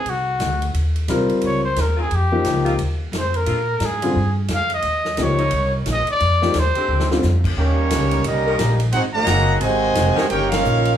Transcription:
Already playing: G#4
0.04 C2, ride
0.10 F#4
0.39 D2, snare, hi-hat pedal, ride
0.62 ride
0.74 D#2, ride
0.96 ride
1.08 C2 G3 C4 F4 A#4, snare, hi-hat pedal, ride
1.29 muted upright bass stroke, ride
1.41 C#2, ride
1.45 C#5
1.64 C5
1.76 D#2, snare, hi-hat pedal, ride
1.81 A#4
1.97 D#3 G#3 C4 F4 G#4
2.11 F2, ride
2.15 G4
2.32 F3 A#3 D#4 G4
2.44 C#2, snare, hi-hat pedal, ride
2.64 D#3 G#3 C4 F4, ride
2.78 D#2, ride
3.12 F2, snare, hi-hat pedal, ride
3.18 C5
3.34 A#4, ride
3.46 A#2 D3 G#3 A#3 F4, ride
3.80 G#2, snare, hi-hat pedal, ride
3.85 G#4
4.02 D3 G3 C4 F4, ride
4.16 G2
4.48 F2, snare, hi-hat pedal, ride
4.54 F5
4.70 ride
4.74 D#5
4.82 D#2, ride
5.05 snare
5.17 C#2 F3 A#3 D#4 G4, snare, hi-hat pedal, ride
5.23 C#5
5.38 G3 A#3 C#4 D#4, ride
5.51 C2, ride
5.86 A#1, snare, hi-hat pedal, ride
5.91 D#5
6.07 D5, muted upright bass stroke, ride
6.20 F2, ride
6.42 F3 A#3 D#4 G4, snare
6.54 D#2, snare, hi-hat pedal, ride
6.59 C5
6.75 D3 G#3 C4 G4, muted upright bass stroke, ride
6.88 D2
7.00 snare
7.11 D3 G3 C4 F4, snare
7.23 F2, snare, hi-hat pedal
7.44 kick, crash
7.57 D#2 D#3 G3 A#3 C#4 D#4 G4 C#5
7.90 C#2, snare, hi-hat pedal, ride
8.11 ride
8.24 C2 G3 A#3 C#4 D#4 G4 A#4 D#5, ride
8.47 D#3 A#3 C#4 A#4
8.59 A#1, snare, hi-hat pedal, ride
8.80 ride
8.92 G#1 C4 D#4 F#4 G#4 C5 F#5, ride
9.13 D#3 F#3 A#3 G#4 D#5 F#5 A#5
9.27 F#1 D#3 G#3 C4 F#4, snare, hi-hat pedal, ride
9.60 G#1 C3 D#3 G#3 F#4 C5 D#5 G#5, ride
9.95 F1, snare, hi-hat pedal, ride
10.16 D#3 A#3 C#4 G4, muted upright bass stroke, snare
10.28 G1 A#3 C#4 D#4 G4 A#4 C#5 G5, ride
10.50 A#3 C#4 D#4 F4 A#4 C#5 F5, snare, ride
10.63 A#1, hi-hat pedal
10.85 ride

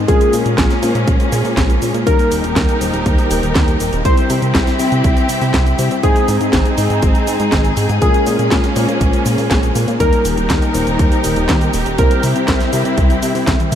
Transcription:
0.08 A#1 G#3 A#3 C#4 F4 G#4 A#4, kick, closed hi-hat, cabasa
0.21 closed hi-hat, cabasa
0.33 A#2, open hi-hat, cabasa
0.46 A#2, closed hi-hat, cabasa
0.58 A#1, kick, snare, clap, closed hi-hat, cabasa
0.70 snare, closed hi-hat, cabasa
0.82 A#2 G#3 C#4 F4 C5, open hi-hat, cabasa
0.95 A#2, closed hi-hat, cabasa
1.08 A#1, kick, closed hi-hat, cabasa
1.20 closed hi-hat, cabasa
1.32 A#2, open hi-hat, cabasa
1.45 A#2, open hi-hat, cabasa
1.57 A#1, kick, snare, clap, closed hi-hat, cabasa
1.70 closed hi-hat, cabasa
1.82 A#2, open hi-hat, cabasa
1.94 A#2, closed hi-hat, cabasa
2.06 D#2 D#3 G3 A#3 D#4 G4 A#4, kick, closed hi-hat, cabasa
2.19 closed hi-hat, cabasa
2.32 D#1, open hi-hat, cabasa
2.44 D#1, closed hi-hat, cabasa
2.56 D#2, kick, snare, clap, closed hi-hat, cabasa
2.69 closed hi-hat, cabasa
2.81 D#1 G3 A#3 D#4 C5, open hi-hat, cabasa
2.94 D#1, closed hi-hat, cabasa
3.06 D#2, kick, closed hi-hat, cabasa
3.18 closed hi-hat, cabasa
3.31 D#1, open hi-hat, cabasa
3.43 D#1, closed hi-hat, cabasa
3.56 D#2, kick, snare, clap, closed hi-hat, cabasa
3.68 closed hi-hat, cabasa
3.80 D#1, open hi-hat, cabasa
3.93 D#1, closed hi-hat, cabasa
4.05 C2 G3 C4 E4 G4 C5, kick, closed hi-hat, cabasa
4.17 closed hi-hat, cabasa
4.30 C3, open hi-hat, cabasa
4.42 C3, closed hi-hat, cabasa
4.55 C2, kick, snare, clap, closed hi-hat, cabasa
4.67 snare, closed hi-hat, cabasa
4.79 C3 G3 C4 E4 E5, open hi-hat, cabasa
4.92 C3, closed hi-hat, cabasa
5.04 C2, kick, closed hi-hat, cabasa
5.17 closed hi-hat, cabasa
5.29 C3, open hi-hat, cabasa
5.42 C3, open hi-hat, cabasa
5.54 C2, kick, snare, clap, closed hi-hat, cabasa
5.66 closed hi-hat, cabasa
5.78 C3 G3 C4 E4 E5, open hi-hat, cabasa
5.91 C3, closed hi-hat, cabasa
6.03 G#1 G#3 C4 D#4 G#4 C5, kick, closed hi-hat, cabasa
6.16 closed hi-hat, cabasa
6.28 G#2, open hi-hat, cabasa
6.41 G#2, closed hi-hat, cabasa
6.53 G#1, kick, snare, clap, closed hi-hat, cabasa
6.65 closed hi-hat, cabasa
6.78 G#2 G#3 C4 D#4 D#5, open hi-hat, cabasa
6.90 G#2, closed hi-hat, cabasa
7.02 G#1, kick, closed hi-hat, cabasa
7.15 closed hi-hat, cabasa
7.27 G#2, open hi-hat, cabasa
7.40 G#2, closed hi-hat, cabasa
7.52 G#1, kick, snare, clap, closed hi-hat, cabasa
7.65 closed hi-hat, cabasa
7.77 G#2, open hi-hat, cabasa
7.89 G#2, closed hi-hat, cabasa
8.02 A#1 G#3 A#3 C#4 F4 G#4 A#4, kick, closed hi-hat, cabasa
8.14 closed hi-hat, cabasa
8.27 A#2, open hi-hat, cabasa
8.39 A#2, closed hi-hat, cabasa
8.51 A#1, kick, snare, clap, closed hi-hat, cabasa
8.64 snare, closed hi-hat, cabasa
8.76 A#2 G#3 C#4 F4 C5, open hi-hat, cabasa
8.89 A#2, closed hi-hat, cabasa
9.01 A#1, kick, closed hi-hat, cabasa
9.13 closed hi-hat, cabasa
9.26 A#2, open hi-hat, cabasa
9.38 A#2, open hi-hat, cabasa
9.51 A#1, kick, snare, clap, closed hi-hat, cabasa
9.63 closed hi-hat, cabasa
9.75 A#2, open hi-hat, cabasa
9.88 A#2, closed hi-hat, cabasa
10.00 D#2 D#3 G3 A#3 D#4 G4 A#4, kick, closed hi-hat, cabasa
10.13 closed hi-hat, cabasa
10.25 D#1, open hi-hat, cabasa
10.38 D#1, closed hi-hat, cabasa
10.50 D#2, kick, snare, clap, closed hi-hat, cabasa
10.62 closed hi-hat, cabasa
10.74 D#1 G3 A#3 D#4 C5, open hi-hat, cabasa
10.87 D#1, closed hi-hat, cabasa
10.99 D#2, kick, closed hi-hat, cabasa
11.12 closed hi-hat, cabasa
11.24 D#1, open hi-hat, cabasa
11.36 D#1, closed hi-hat, cabasa
11.49 D#2, kick, snare, clap, closed hi-hat, cabasa
11.61 closed hi-hat, cabasa
11.74 D#1, open hi-hat, cabasa
11.86 D#1, closed hi-hat, cabasa
11.98 C2 G3 C4 E4 A#4 C5, kick, closed hi-hat, cabasa
12.11 closed hi-hat, cabasa
12.23 C3, open hi-hat, cabasa
12.36 C3, closed hi-hat, cabasa
12.48 C2, kick, snare, clap, closed hi-hat, cabasa
12.60 snare, closed hi-hat, cabasa
12.73 C3 G3 C4 E4 E5, open hi-hat, cabasa
12.85 C3, closed hi-hat, cabasa
12.98 C2, kick, closed hi-hat, cabasa
13.10 closed hi-hat, cabasa
13.23 C3, open hi-hat, cabasa
13.35 C3, open hi-hat, cabasa
13.47 C2, kick, snare, clap, closed hi-hat, high tom, cabasa
13.60 closed hi-hat, high tom, cabasa

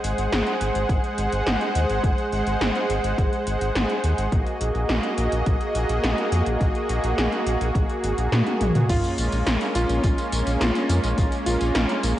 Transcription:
Already playing: G#3 G#4 C5 F#5
0.04 G#1, closed hi-hat
0.18 G#1, closed hi-hat
0.32 G#1, snare, closed hi-hat
0.47 closed hi-hat
0.61 G#1, closed hi-hat
0.75 G#1, closed hi-hat
0.89 G#1, kick, closed hi-hat
1.04 closed hi-hat
1.18 G#1, closed hi-hat
1.32 G#1, closed hi-hat
1.47 G#1, snare, closed hi-hat
1.61 closed hi-hat
1.75 D#2, closed hi-hat
1.90 G#1, closed hi-hat
2.04 G#1, kick, closed hi-hat
2.18 closed hi-hat
2.32 G#1, closed hi-hat
2.47 G#1, closed hi-hat
2.61 G#1, snare, closed hi-hat
2.75 closed hi-hat
2.90 G#1, closed hi-hat
3.04 G#1, closed hi-hat
3.18 G#1, kick, closed hi-hat
3.33 closed hi-hat
3.47 G#1, closed hi-hat
3.61 G#1, closed hi-hat
3.75 G#1, snare, closed hi-hat
3.89 closed hi-hat
4.04 D#2, closed hi-hat
4.18 G#1, closed hi-hat
4.32 A#1 A#3 F#4 G#4 D#5, kick, closed hi-hat
4.47 closed hi-hat
4.61 A#1, closed hi-hat
4.75 A#1, closed hi-hat
4.89 A#1, snare, closed hi-hat
5.03 closed hi-hat
5.18 A#1, closed hi-hat
5.32 A#1, closed hi-hat
5.46 A#1, kick, closed hi-hat
5.61 closed hi-hat
5.75 A#1, closed hi-hat
5.89 A#1, closed hi-hat
6.04 A#1, snare, closed hi-hat
6.18 closed hi-hat
6.32 F2, closed hi-hat
6.47 A#1, closed hi-hat
6.61 A#1, kick, closed hi-hat
6.75 closed hi-hat
6.89 A#1, closed hi-hat
7.04 A#1, closed hi-hat
7.18 A#1, snare, closed hi-hat
7.32 closed hi-hat
7.46 A#1, closed hi-hat
7.61 A#1, closed hi-hat
7.75 A#1, kick, closed hi-hat
7.90 closed hi-hat
8.04 G#1, closed hi-hat
8.18 A#1, closed hi-hat
8.32 A#2, snare, closed hi-hat, high tom
8.47 closed hi-hat, high tom
8.61 A#1, closed hi-hat, mid tom
8.75 A#2, closed hi-hat, mid tom
8.89 A#1 C#4 F4, kick, closed hi-hat, crash, tambourine
9.04 closed hi-hat, tambourine
9.18 A#1, closed hi-hat, tambourine
9.32 A#1, closed hi-hat, tambourine
9.46 A#1, snare, closed hi-hat, tambourine
9.61 closed hi-hat, tambourine
9.75 A#1 F4, closed hi-hat, tambourine
9.89 A#1, closed hi-hat, tambourine
10.03 A#1, kick, closed hi-hat, tambourine
10.18 closed hi-hat, tambourine
10.32 A#1, closed hi-hat, tambourine
10.47 A#1, closed hi-hat, tambourine
10.61 A#1 F4, snare, closed hi-hat, tambourine
10.75 closed hi-hat, tambourine
10.89 F2, closed hi-hat, tambourine
11.04 A#1, closed hi-hat, tambourine
11.18 A#1, kick, closed hi-hat, tambourine
11.32 closed hi-hat, tambourine
11.46 A#1 F4, closed hi-hat, tambourine
11.61 A#1, closed hi-hat, tambourine
11.75 A#1, snare, closed hi-hat, tambourine
11.89 closed hi-hat, tambourine
12.04 A#1, closed hi-hat, tambourine

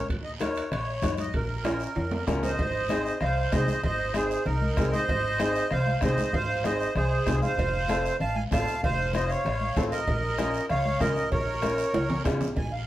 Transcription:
0.09 D#2, bombo low, high conga, low conga, high timbale, long guiro
0.24 D#5
0.40 D#4 F#4 A#4 C#5, bombo rim, high conga, high timbale, short guiro
0.55 high timbale, short guiro
0.71 A#1 C#5, bombo rim, high conga, low conga, high timbale, long guiro
1.02 F#2 D#4 F#4 C#5, bombo low, bombo rim, high conga, low conga, high timbale, short guiro
1.18 D#5, high conga, high timbale, short guiro
1.33 A#1 A#4, bombo low, high conga, low conga, high timbale, long guiro
1.65 C#4 F4 A#4, bombo rim, high conga, high timbale, short guiro
1.80 short guiro
1.95 F2, high conga, low conga, high timbale, long guiro
2.11 high conga, low timbale
2.27 C#2 C#4 F4 A#4, bombo low, bombo rim, high conga, low conga, low timbale, short guiro
2.43 C5 D#5, high conga, low timbale, short guiro
2.58 G#1, bombo low, cowbell, high conga, long guiro
2.89 C4 D#4 G#4, bombo rim, cowbell, high conga, short guiro
3.06 short guiro
3.21 C2 C5 F5, bombo rim, cowbell, high conga, low conga, long guiro
3.52 C2 C4 D#4 G#4 C5 D#5, bombo low, bombo rim, cowbell, high conga, low timbale, short guiro
3.68 high conga, short guiro
3.83 G#1 C5 D#5, bombo low, cowbell, high conga, low conga, long guiro
4.14 C4 D#4 G#4 C5, bombo rim, cowbell, high conga, short guiro
4.31 short guiro
4.46 C2 D#4 A#4, cowbell, high conga, low conga, long guiro
4.62 high conga
4.77 C2 C4 D#4 G#4, bombo low, bombo rim, cowbell, high conga, short guiro
4.92 C5 D#5, high conga, short guiro
5.09 G#1, bombo low, cowbell, high conga, low conga, long guiro
5.39 C4 D#4 G#4, bombo rim, cowbell, high conga, short guiro
5.55 short guiro
5.71 C2 C5 F5, bombo rim, cowbell, high conga, low conga, long guiro
5.86 high conga
6.01 C2 C4 D#4 G#4 C5 D#5, bombo low, bombo rim, cowbell, high conga, low conga, low timbale, short guiro
6.18 high conga, short guiro
6.33 G#1 C5 F5, bombo low, cowbell, high conga, low conga, long guiro
6.64 C4 D#4 G#4 C5 D#5, bombo rim, cowbell, high conga, short guiro
6.81 short guiro
6.95 C2 G#4 C5, bombo rim, cowbell, high conga, low conga, long guiro
7.26 C2 C4 D#4 G#4, bombo low, bombo rim, cowbell, high conga, low timbale, short guiro
7.42 C5 F5, high conga, short guiro
7.58 F1, bombo low, cowbell, high conga, long guiro
7.89 C4 F4 A4, bombo rim, cowbell, high conga, short guiro
8.06 short guiro
8.20 A1 F5 A5, cowbell, high conga, low conga, long guiro
8.35 F5 G#5, high conga
8.51 A1 C4 F4 A4 F5 A5, bombo low, bombo rim, cowbell, high conga, low conga, low timbale, short guiro
8.68 short guiro
8.83 F1 C5 F5, bombo low, cowbell, high conga, low conga, long guiro
9.13 C4 F4 C5 D#5, bombo rim, cowbell, high conga, short guiro
9.28 C#5 F5, short guiro
9.45 A1, bombo rim, cowbell, high conga, low conga, long guiro
9.61 high conga
9.76 A1 C4 F4 A4, bombo low, bombo rim, cowbell, high conga, low conga, short guiro
9.91 A#4 D#5, short guiro
10.07 A#1, bombo low, cowbell, high conga, low conga, long guiro
10.38 C#4 F4 A#4, bombo rim, cowbell, high conga, short guiro
10.54 short guiro
10.69 C#2 C#5 F5, bombo rim, cowbell, high conga, low conga, long guiro
10.85 high conga
11.00 C#2 C#4 F4 A#4 D#5, bombo low, bombo rim, cowbell, high conga, low conga, short guiro
11.16 short guiro
11.32 A#1 A#4 C#5, bombo low, cowbell, high conga, low conga, long guiro
11.62 C#4 F4 A#4, bombo rim, cowbell, high conga, short guiro
11.78 short guiro
11.94 C#2, cowbell, high conga, high timbale, long guiro
12.10 low conga, low timbale
12.24 C#2 C#4 F4 G#4, bombo low, bombo rim, cowbell, low timbale, short guiro
12.41 low conga, low timbale, short guiro
12.56 A#1 G#5, bombo low, cowbell, high conga, low conga, long guiro
12.72 F5

